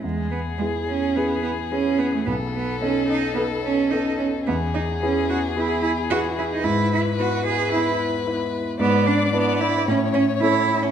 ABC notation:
X:1
M:4/4
L:1/16
Q:1/4=110
K:E
V:1 name="Violin"
G16 | A16 | G16 | B16 |
[K:A] d8 c8 |]
V:2 name="Grand piano"
E,,4 [B,EG]4 [B,EG]4 [B,EG]4 | B,,,4 [B,DA]4 [B,DA]4 [B,DA]4 | E,,4 [B,EG]4 [B,EG]4 [B,EG]4 | G,,4 [B,EB]4 [B,EB]4 [B,EB]4 |
[K:A] G,,4 [DEB]4 A,,4 [CEA]4 |]
V:3 name="Cello"
G,2 B,2 G,2 C2 B,2 B,2 C2 B, A, | B,2 B,2 C2 D2 B,2 C2 D2 C2 | B,2 D2 C2 F2 E2 E2 F2 E D | E2 E2 F2 G2 E2 z6 |
[K:A] B,2 D2 B,2 E2 C2 C2 E3 C |]